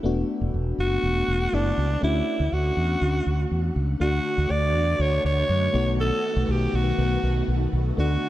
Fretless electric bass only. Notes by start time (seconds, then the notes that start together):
0.04 E1
0.41 E1
0.54 E1
0.78 F#1
1.03 E1
1.28 E1
1.53 F#1
1.78 C#2
2.03 D2
2.40 D2
2.53 D2
2.77 E2
3.02 D2
3.27 D2
3.51 E2
3.76 C#2
4.01 D2
4.38 D2
4.50 D2
4.75 E2
5.00 D2
5.25 D2
5.49 F#2
5.74 B1
6.36 B1
6.49 B1
6.74 B1
6.98 B1
7.23 B1
7.48 B1
7.73 B1
7.98 D2